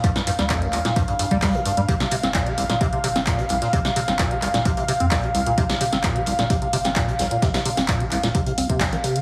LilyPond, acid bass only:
\new Staff \with { instrumentName = "Acid bass" } { \clef bass \time 4/4 \key c \dorian \tempo 4 = 130 g,16 g,16 g,16 g16 f,16 g,16 g,,16 bes,16 g,16 g,16 g,16 g16 g16 bes,16 g,16 g16 | c16 c16 c16 c'16 bes,16 c16 c,16 bes,16 c16 c16 c16 c'16 bes,16 c16 c,16 bes,16 | c16 c16 c16 c'16 bes,16 c16 c,16 bes,16 c16 c16 c16 c'16 bes,16 c16 c,16 bes,16 | c16 c16 c16 c'16 bes,16 c16 c,16 bes,16 c16 c16 c16 c'16 bes,16 c16 c,16 bes,16 |
c16 c16 c16 c'16 bes,16 c16 c,16 bes,16 c16 c16 c'16 c16 bes,16 ees16 c16 d16 | }